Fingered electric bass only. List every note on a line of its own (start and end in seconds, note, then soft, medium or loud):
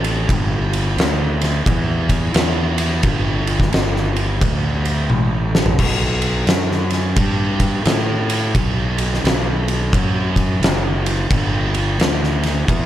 0.00 0.25 A1 medium
0.29 0.95 G1 loud
0.96 1.63 D2 loud
1.66 2.32 E2 loud
2.35 3.01 E2 medium
3.03 3.70 G1 loud
3.72 4.38 G1 medium
4.41 5.08 D2 loud
5.09 5.76 A1 loud
5.79 6.45 B1 loud
6.47 7.14 F#2 medium
7.16 7.83 G2 medium
7.86 8.52 A2 loud
8.55 9.21 B1 medium
9.24 9.90 B1 loud
9.93 10.59 F#2 loud
10.60 11.27 F#1 loud
11.30 11.97 G1 loud
11.98 12.65 D2 loud
12.68 12.86 E2 loud